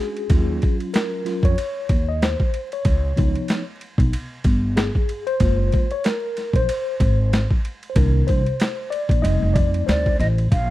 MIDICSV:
0, 0, Header, 1, 5, 480
1, 0, Start_track
1, 0, Tempo, 638298
1, 225, Time_signature, 4, 2, 24, 8
1, 8048, End_track
2, 0, Start_track
2, 0, Title_t, "Flute"
2, 0, Program_c, 0, 73
2, 7432, Note_on_c, 0, 74, 90
2, 7652, Note_off_c, 0, 74, 0
2, 7669, Note_on_c, 0, 75, 90
2, 7723, Note_off_c, 0, 75, 0
2, 7909, Note_on_c, 0, 77, 82
2, 8048, Note_off_c, 0, 77, 0
2, 8048, End_track
3, 0, Start_track
3, 0, Title_t, "Tine electric piano"
3, 0, Program_c, 1, 4
3, 0, Note_on_c, 1, 56, 49
3, 0, Note_on_c, 1, 61, 47
3, 0, Note_on_c, 1, 62, 46
3, 0, Note_on_c, 1, 66, 58
3, 0, Note_on_c, 1, 68, 89
3, 190, Note_off_c, 1, 56, 0
3, 191, Note_off_c, 1, 61, 0
3, 193, Note_off_c, 1, 62, 0
3, 194, Note_off_c, 1, 66, 0
3, 220, Note_on_c, 1, 54, 60
3, 225, Note_on_c, 1, 61, 53
3, 228, Note_on_c, 1, 65, 65
3, 573, Note_off_c, 1, 68, 0
3, 704, Note_on_c, 1, 70, 89
3, 912, Note_off_c, 1, 54, 0
3, 915, Note_off_c, 1, 61, 0
3, 916, Note_off_c, 1, 65, 0
3, 938, Note_on_c, 1, 54, 52
3, 942, Note_on_c, 1, 61, 44
3, 946, Note_on_c, 1, 65, 62
3, 1089, Note_on_c, 1, 73, 96
3, 1095, Note_off_c, 1, 70, 0
3, 1157, Note_off_c, 1, 54, 0
3, 1159, Note_off_c, 1, 61, 0
3, 1161, Note_off_c, 1, 65, 0
3, 1568, Note_on_c, 1, 75, 86
3, 1581, Note_off_c, 1, 73, 0
3, 1669, Note_off_c, 1, 75, 0
3, 1672, Note_on_c, 1, 72, 76
3, 2022, Note_off_c, 1, 72, 0
3, 2053, Note_on_c, 1, 73, 80
3, 2377, Note_on_c, 1, 53, 59
3, 2382, Note_on_c, 1, 59, 52
3, 2385, Note_on_c, 1, 63, 62
3, 2715, Note_off_c, 1, 53, 0
3, 2717, Note_off_c, 1, 59, 0
3, 2719, Note_off_c, 1, 63, 0
3, 2739, Note_off_c, 1, 73, 0
3, 3583, Note_on_c, 1, 68, 70
3, 3937, Note_off_c, 1, 68, 0
3, 3961, Note_on_c, 1, 72, 101
3, 4060, Note_on_c, 1, 56, 52
3, 4064, Note_on_c, 1, 58, 49
3, 4070, Note_on_c, 1, 65, 63
3, 4397, Note_off_c, 1, 56, 0
3, 4399, Note_off_c, 1, 58, 0
3, 4402, Note_off_c, 1, 65, 0
3, 4449, Note_on_c, 1, 73, 91
3, 4457, Note_off_c, 1, 72, 0
3, 4540, Note_off_c, 1, 73, 0
3, 4551, Note_on_c, 1, 70, 97
3, 4932, Note_on_c, 1, 72, 96
3, 4939, Note_off_c, 1, 70, 0
3, 5618, Note_off_c, 1, 72, 0
3, 5939, Note_on_c, 1, 72, 62
3, 5979, Note_on_c, 1, 51, 55
3, 5984, Note_off_c, 1, 72, 0
3, 5984, Note_on_c, 1, 58, 55
3, 5985, Note_on_c, 1, 70, 79
3, 5988, Note_on_c, 1, 62, 66
3, 6219, Note_on_c, 1, 72, 94
3, 6232, Note_off_c, 1, 70, 0
3, 6316, Note_off_c, 1, 51, 0
3, 6319, Note_off_c, 1, 58, 0
3, 6321, Note_off_c, 1, 62, 0
3, 6695, Note_on_c, 1, 74, 99
3, 6716, Note_off_c, 1, 72, 0
3, 6935, Note_on_c, 1, 75, 102
3, 6937, Note_on_c, 1, 63, 61
3, 6939, Note_on_c, 1, 55, 46
3, 6941, Note_on_c, 1, 57, 51
3, 6945, Note_on_c, 1, 60, 65
3, 6947, Note_off_c, 1, 74, 0
3, 7173, Note_on_c, 1, 74, 99
3, 7187, Note_off_c, 1, 75, 0
3, 7401, Note_off_c, 1, 74, 0
3, 7418, Note_on_c, 1, 72, 75
3, 7630, Note_off_c, 1, 63, 0
3, 7632, Note_off_c, 1, 55, 0
3, 7633, Note_off_c, 1, 57, 0
3, 7635, Note_off_c, 1, 60, 0
3, 7871, Note_off_c, 1, 72, 0
3, 8048, End_track
4, 0, Start_track
4, 0, Title_t, "Upright bass"
4, 0, Program_c, 2, 32
4, 227, Note_on_c, 2, 39, 99
4, 436, Note_off_c, 2, 39, 0
4, 1075, Note_on_c, 2, 41, 90
4, 1167, Note_off_c, 2, 41, 0
4, 1425, Note_on_c, 2, 39, 93
4, 1757, Note_off_c, 2, 39, 0
4, 2147, Note_on_c, 2, 37, 97
4, 2356, Note_off_c, 2, 37, 0
4, 2395, Note_on_c, 2, 37, 88
4, 2513, Note_off_c, 2, 37, 0
4, 2993, Note_on_c, 2, 35, 95
4, 3086, Note_off_c, 2, 35, 0
4, 3345, Note_on_c, 2, 31, 90
4, 3677, Note_off_c, 2, 31, 0
4, 4063, Note_on_c, 2, 30, 107
4, 4274, Note_off_c, 2, 30, 0
4, 4914, Note_on_c, 2, 34, 89
4, 5006, Note_off_c, 2, 34, 0
4, 5266, Note_on_c, 2, 32, 104
4, 5598, Note_off_c, 2, 32, 0
4, 5986, Note_on_c, 2, 36, 113
4, 6195, Note_off_c, 2, 36, 0
4, 6235, Note_on_c, 2, 36, 90
4, 6353, Note_off_c, 2, 36, 0
4, 6837, Note_on_c, 2, 34, 101
4, 6928, Note_off_c, 2, 34, 0
4, 6946, Note_on_c, 2, 29, 100
4, 7067, Note_off_c, 2, 29, 0
4, 7086, Note_on_c, 2, 29, 88
4, 7173, Note_off_c, 2, 29, 0
4, 7187, Note_on_c, 2, 41, 99
4, 7396, Note_off_c, 2, 41, 0
4, 7427, Note_on_c, 2, 38, 90
4, 7636, Note_off_c, 2, 38, 0
4, 7666, Note_on_c, 2, 33, 106
4, 7875, Note_off_c, 2, 33, 0
4, 7909, Note_on_c, 2, 34, 97
4, 8048, Note_off_c, 2, 34, 0
4, 8048, End_track
5, 0, Start_track
5, 0, Title_t, "Drums"
5, 124, Note_on_c, 9, 51, 44
5, 200, Note_off_c, 9, 51, 0
5, 223, Note_on_c, 9, 51, 77
5, 225, Note_on_c, 9, 36, 113
5, 298, Note_off_c, 9, 51, 0
5, 300, Note_off_c, 9, 36, 0
5, 466, Note_on_c, 9, 51, 50
5, 474, Note_on_c, 9, 36, 90
5, 541, Note_off_c, 9, 51, 0
5, 549, Note_off_c, 9, 36, 0
5, 604, Note_on_c, 9, 51, 39
5, 680, Note_off_c, 9, 51, 0
5, 706, Note_on_c, 9, 44, 54
5, 706, Note_on_c, 9, 51, 88
5, 720, Note_on_c, 9, 38, 113
5, 782, Note_off_c, 9, 44, 0
5, 782, Note_off_c, 9, 51, 0
5, 795, Note_off_c, 9, 38, 0
5, 948, Note_on_c, 9, 51, 62
5, 956, Note_on_c, 9, 38, 35
5, 1023, Note_off_c, 9, 51, 0
5, 1032, Note_off_c, 9, 38, 0
5, 1074, Note_on_c, 9, 36, 93
5, 1090, Note_on_c, 9, 51, 42
5, 1149, Note_off_c, 9, 36, 0
5, 1165, Note_off_c, 9, 51, 0
5, 1188, Note_on_c, 9, 51, 86
5, 1263, Note_off_c, 9, 51, 0
5, 1422, Note_on_c, 9, 51, 61
5, 1424, Note_on_c, 9, 36, 96
5, 1498, Note_off_c, 9, 51, 0
5, 1499, Note_off_c, 9, 36, 0
5, 1672, Note_on_c, 9, 44, 51
5, 1672, Note_on_c, 9, 51, 70
5, 1675, Note_on_c, 9, 38, 101
5, 1747, Note_off_c, 9, 44, 0
5, 1747, Note_off_c, 9, 51, 0
5, 1750, Note_off_c, 9, 38, 0
5, 1803, Note_on_c, 9, 36, 85
5, 1878, Note_off_c, 9, 36, 0
5, 1909, Note_on_c, 9, 51, 56
5, 1984, Note_off_c, 9, 51, 0
5, 2046, Note_on_c, 9, 51, 48
5, 2121, Note_off_c, 9, 51, 0
5, 2142, Note_on_c, 9, 51, 77
5, 2145, Note_on_c, 9, 36, 124
5, 2217, Note_off_c, 9, 51, 0
5, 2220, Note_off_c, 9, 36, 0
5, 2386, Note_on_c, 9, 51, 56
5, 2393, Note_on_c, 9, 36, 97
5, 2461, Note_off_c, 9, 51, 0
5, 2469, Note_off_c, 9, 36, 0
5, 2523, Note_on_c, 9, 51, 40
5, 2598, Note_off_c, 9, 51, 0
5, 2619, Note_on_c, 9, 44, 64
5, 2619, Note_on_c, 9, 51, 80
5, 2632, Note_on_c, 9, 38, 101
5, 2694, Note_off_c, 9, 44, 0
5, 2694, Note_off_c, 9, 51, 0
5, 2707, Note_off_c, 9, 38, 0
5, 2866, Note_on_c, 9, 51, 58
5, 2941, Note_off_c, 9, 51, 0
5, 2994, Note_on_c, 9, 36, 96
5, 3006, Note_on_c, 9, 51, 41
5, 3069, Note_off_c, 9, 36, 0
5, 3082, Note_off_c, 9, 51, 0
5, 3108, Note_on_c, 9, 51, 87
5, 3183, Note_off_c, 9, 51, 0
5, 3341, Note_on_c, 9, 51, 64
5, 3343, Note_on_c, 9, 36, 94
5, 3416, Note_off_c, 9, 51, 0
5, 3419, Note_off_c, 9, 36, 0
5, 3587, Note_on_c, 9, 44, 52
5, 3587, Note_on_c, 9, 51, 70
5, 3590, Note_on_c, 9, 38, 110
5, 3662, Note_off_c, 9, 44, 0
5, 3662, Note_off_c, 9, 51, 0
5, 3665, Note_off_c, 9, 38, 0
5, 3723, Note_on_c, 9, 36, 79
5, 3798, Note_off_c, 9, 36, 0
5, 3827, Note_on_c, 9, 51, 55
5, 3903, Note_off_c, 9, 51, 0
5, 3963, Note_on_c, 9, 51, 47
5, 4038, Note_off_c, 9, 51, 0
5, 4060, Note_on_c, 9, 51, 82
5, 4064, Note_on_c, 9, 36, 108
5, 4135, Note_off_c, 9, 51, 0
5, 4139, Note_off_c, 9, 36, 0
5, 4304, Note_on_c, 9, 51, 55
5, 4313, Note_on_c, 9, 36, 92
5, 4380, Note_off_c, 9, 51, 0
5, 4388, Note_off_c, 9, 36, 0
5, 4441, Note_on_c, 9, 51, 37
5, 4516, Note_off_c, 9, 51, 0
5, 4544, Note_on_c, 9, 44, 58
5, 4544, Note_on_c, 9, 51, 80
5, 4557, Note_on_c, 9, 38, 123
5, 4619, Note_off_c, 9, 44, 0
5, 4619, Note_off_c, 9, 51, 0
5, 4632, Note_off_c, 9, 38, 0
5, 4789, Note_on_c, 9, 51, 65
5, 4797, Note_on_c, 9, 38, 34
5, 4864, Note_off_c, 9, 51, 0
5, 4872, Note_off_c, 9, 38, 0
5, 4914, Note_on_c, 9, 36, 90
5, 4930, Note_on_c, 9, 51, 42
5, 4990, Note_off_c, 9, 36, 0
5, 5005, Note_off_c, 9, 51, 0
5, 5030, Note_on_c, 9, 51, 98
5, 5105, Note_off_c, 9, 51, 0
5, 5265, Note_on_c, 9, 36, 92
5, 5266, Note_on_c, 9, 51, 64
5, 5340, Note_off_c, 9, 36, 0
5, 5342, Note_off_c, 9, 51, 0
5, 5512, Note_on_c, 9, 44, 53
5, 5512, Note_on_c, 9, 51, 76
5, 5515, Note_on_c, 9, 38, 105
5, 5588, Note_off_c, 9, 44, 0
5, 5588, Note_off_c, 9, 51, 0
5, 5591, Note_off_c, 9, 38, 0
5, 5644, Note_on_c, 9, 36, 88
5, 5719, Note_off_c, 9, 36, 0
5, 5752, Note_on_c, 9, 51, 55
5, 5827, Note_off_c, 9, 51, 0
5, 5887, Note_on_c, 9, 51, 45
5, 5962, Note_off_c, 9, 51, 0
5, 5984, Note_on_c, 9, 51, 89
5, 5986, Note_on_c, 9, 36, 108
5, 6059, Note_off_c, 9, 51, 0
5, 6061, Note_off_c, 9, 36, 0
5, 6225, Note_on_c, 9, 51, 57
5, 6234, Note_on_c, 9, 36, 88
5, 6300, Note_off_c, 9, 51, 0
5, 6309, Note_off_c, 9, 36, 0
5, 6365, Note_on_c, 9, 51, 42
5, 6441, Note_off_c, 9, 51, 0
5, 6465, Note_on_c, 9, 44, 66
5, 6465, Note_on_c, 9, 51, 90
5, 6478, Note_on_c, 9, 38, 107
5, 6540, Note_off_c, 9, 44, 0
5, 6540, Note_off_c, 9, 51, 0
5, 6553, Note_off_c, 9, 38, 0
5, 6709, Note_on_c, 9, 51, 72
5, 6785, Note_off_c, 9, 51, 0
5, 6836, Note_on_c, 9, 36, 92
5, 6852, Note_on_c, 9, 51, 44
5, 6911, Note_off_c, 9, 36, 0
5, 6927, Note_off_c, 9, 51, 0
5, 6953, Note_on_c, 9, 51, 90
5, 7028, Note_off_c, 9, 51, 0
5, 7186, Note_on_c, 9, 36, 101
5, 7187, Note_on_c, 9, 51, 63
5, 7262, Note_off_c, 9, 36, 0
5, 7262, Note_off_c, 9, 51, 0
5, 7326, Note_on_c, 9, 51, 49
5, 7402, Note_off_c, 9, 51, 0
5, 7435, Note_on_c, 9, 44, 52
5, 7435, Note_on_c, 9, 51, 73
5, 7438, Note_on_c, 9, 38, 111
5, 7510, Note_off_c, 9, 44, 0
5, 7510, Note_off_c, 9, 51, 0
5, 7513, Note_off_c, 9, 38, 0
5, 7566, Note_on_c, 9, 36, 86
5, 7641, Note_off_c, 9, 36, 0
5, 7674, Note_on_c, 9, 51, 60
5, 7683, Note_on_c, 9, 38, 38
5, 7749, Note_off_c, 9, 51, 0
5, 7758, Note_off_c, 9, 38, 0
5, 7808, Note_on_c, 9, 51, 45
5, 7883, Note_off_c, 9, 51, 0
5, 7909, Note_on_c, 9, 36, 118
5, 7909, Note_on_c, 9, 51, 76
5, 7984, Note_off_c, 9, 36, 0
5, 7984, Note_off_c, 9, 51, 0
5, 8048, End_track
0, 0, End_of_file